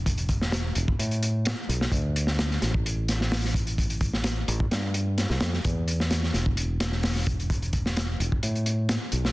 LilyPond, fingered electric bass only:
\new Staff \with { instrumentName = "Fingered electric bass" } { \clef bass \time 4/4 \key e \phrygian \tempo 4 = 129 e,,4. e,,16 r16 a,4~ a,16 r16 b,,16 r16 | d,4. a,,2~ a,,8~ | a,,4. a,,16 r16 g,4~ g,16 c,16 f,16 r16 | e,4. e,,2~ e,,8~ |
e,,4. e,,16 r16 a,4~ a,16 r16 b,,16 r16 | }